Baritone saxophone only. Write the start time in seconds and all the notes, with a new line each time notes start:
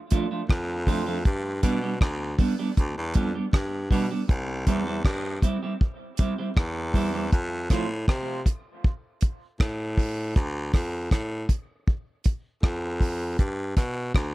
0.50 F2
1.25 G2
1.63 B2
2.01 D2
2.78 D2
2.98 E2
3.16 F2
3.54 G2
3.91 B2
4.30 C2
4.67 E2
5.05 G2
6.57 E2
7.33 F2
7.71 A2
8.08 C3
9.60 A2
10.36 D2
10.74 F2
11.11 A2
12.63 F2
13.39 G2
13.77 B2
14.15 D2